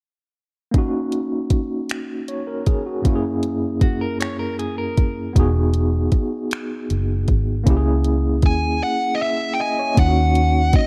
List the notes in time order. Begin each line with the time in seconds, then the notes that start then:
0.71 A#3 C#4, kick, closed hi-hat
0.76 D#4 F#4
1.12 closed hi-hat
1.50 kick, closed hi-hat
1.89 finger snap, closed hi-hat
2.28 C#5, closed hi-hat
2.47 A#4
2.66 G#4, kick, closed hi-hat
2.86 F#4
3.02 F#2 A#3 C#4, kick, closed hi-hat
3.07 E4 F#4
3.15 G#4
3.43 closed hi-hat
3.81 F#4, kick, closed hi-hat
4.01 A#4
4.20 C#5, finger snap, closed hi-hat
4.39 A#4
4.59 G#4, closed hi-hat
4.78 A#4
4.97 kick, closed hi-hat
5.33 E1 B3 D#4, kick, closed hi-hat
5.37 F#4 G#4
5.74 closed hi-hat
6.12 muted fingered electric bass stroke, kick, closed hi-hat
6.51 finger snap, closed hi-hat
6.90 F#1, closed hi-hat
7.28 G#1, kick, closed hi-hat
7.64 C#2 A#3 C#4, kick, closed hi-hat
7.68 E4 G4
7.77 G#4
8.04 closed hi-hat
8.42 D#2 G#5, kick, closed hi-hat
8.83 F#5
9.15 D#5
9.21 E5
9.54 G5
9.60 D#5 G#5
9.79 C#5
9.95 D#2 A#3 C#4, kick, closed hi-hat
9.99 D#4 F4 F#5
10.08 F#4
10.35 closed hi-hat
10.73 D#5, muted fingered electric bass stroke, kick, closed hi-hat